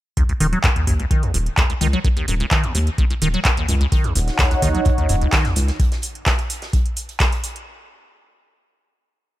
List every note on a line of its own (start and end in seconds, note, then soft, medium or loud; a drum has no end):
0.17 0.24 D#2 medium
0.17 kick loud
0.17 closed hi-hat medium
0.29 0.33 C#2 medium
0.29 closed hi-hat soft
0.40 0.55 D#1 loud
0.40 0.47 D#3 loud
0.40 open hi-hat loud
0.53 0.59 F#3 medium
0.53 closed hi-hat soft
0.64 0.68 F#2 loud
0.64 kick loud
0.64 clap loud
0.64 closed hi-hat medium
0.76 0.85 D#2 medium
0.76 closed hi-hat soft
0.87 1.02 D#2 medium
0.87 0.94 F#2 medium
0.87 kick medium
0.87 open hi-hat loud
1.00 1.06 C#2 medium
1.00 closed hi-hat soft
1.11 1.24 D#3 medium
1.11 kick loud
1.11 closed hi-hat medium
1.23 1.32 D#2 medium
1.23 closed hi-hat soft
1.34 1.49 D#1 medium
1.34 1.38 C#2 medium
1.34 open hi-hat loud
1.46 closed hi-hat soft
1.57 1.64 D#2 medium
1.57 kick loud
1.57 clap loud
1.57 closed hi-hat medium
1.70 1.74 C#2 medium
1.70 closed hi-hat soft
1.81 1.96 C#2 medium
1.81 1.88 D#3 loud
1.81 open hi-hat loud
1.93 2.00 F#3 medium
1.93 closed hi-hat soft
2.04 2.09 F#2 loud
2.04 kick loud
2.04 closed hi-hat medium
2.17 2.26 D#2 medium
2.17 closed hi-hat soft
2.28 2.43 D#1 medium
2.28 2.35 F#2 medium
2.28 open hi-hat loud
2.40 2.46 C#2 medium
2.40 closed hi-hat soft
2.51 2.65 D#3 medium
2.51 kick loud
2.51 clap loud
2.51 closed hi-hat medium
2.64 2.73 D#2 medium
2.64 closed hi-hat soft
2.75 2.79 C#2 medium
2.75 2.90 D#2 medium
2.75 open hi-hat loud
2.87 closed hi-hat soft
2.98 3.05 D#2 medium
2.98 kick loud
2.98 closed hi-hat medium
3.10 3.14 C#2 medium
3.10 closed hi-hat soft
3.22 3.36 D#1 medium
3.22 3.28 D#3 loud
3.22 open hi-hat loud
3.34 3.40 F#3 medium
3.34 closed hi-hat soft
3.45 3.49 F#2 loud
3.45 kick loud
3.45 clap loud
3.45 closed hi-hat medium
3.57 3.67 D#2 medium
3.57 closed hi-hat soft
3.69 3.83 C#2 medium
3.69 3.75 F#2 medium
3.69 open hi-hat loud
3.81 3.87 C#2 medium
3.81 closed hi-hat soft
3.92 4.06 D#3 medium
3.92 5.78 D#4 medium
3.92 5.78 C#5 medium
3.92 5.78 F#5 medium
3.92 kick loud
3.92 closed hi-hat medium
4.04 4.14 D#2 medium
4.04 closed hi-hat soft
4.15 4.30 D#1 medium
4.15 4.20 C#2 medium
4.15 closed hi-hat medium
4.15 open hi-hat loud
4.28 snare soft
4.28 closed hi-hat soft
4.39 4.46 D#2 medium
4.39 kick loud
4.39 snare loud
4.39 clap loud
4.39 closed hi-hat medium
4.51 4.55 C#2 medium
4.51 closed hi-hat soft
4.62 4.77 D#2 medium
4.62 4.69 D#3 loud
4.62 kick medium
4.62 snare soft
4.62 closed hi-hat medium
4.62 open hi-hat loud
4.75 4.81 F#3 medium
4.75 closed hi-hat soft
4.85 4.90 F#2 loud
4.85 kick loud
4.85 closed hi-hat medium
4.98 5.07 D#2 medium
4.98 closed hi-hat soft
5.09 5.24 D#1 medium
5.09 5.16 F#2 medium
5.09 closed hi-hat medium
5.09 open hi-hat loud
5.21 5.28 C#2 medium
5.21 closed hi-hat soft
5.32 5.46 D#3 medium
5.32 kick loud
5.32 snare loud
5.32 clap loud
5.32 closed hi-hat medium
5.45 5.54 D#2 medium
5.45 snare medium
5.45 closed hi-hat soft
5.56 5.71 C#2 loud
5.56 5.60 C#2 medium
5.56 closed hi-hat medium
5.56 open hi-hat loud
5.68 snare soft
5.68 closed hi-hat soft
5.80 kick loud
5.80 closed hi-hat medium
5.92 snare soft
5.92 closed hi-hat soft
6.02 closed hi-hat medium
6.02 open hi-hat loud
6.15 closed hi-hat soft
6.26 kick loud
6.26 snare loud
6.26 clap loud
6.26 closed hi-hat medium
6.38 closed hi-hat soft
6.50 closed hi-hat medium
6.50 open hi-hat loud
6.62 snare medium
6.62 closed hi-hat soft
6.73 kick loud
6.73 closed hi-hat medium
6.86 closed hi-hat soft
6.96 closed hi-hat medium
6.96 open hi-hat loud
7.09 closed hi-hat soft
7.20 kick loud
7.20 snare loud
7.20 clap loud
7.20 closed hi-hat medium
7.32 closed hi-hat soft
7.44 closed hi-hat medium
7.44 open hi-hat loud
7.56 closed hi-hat soft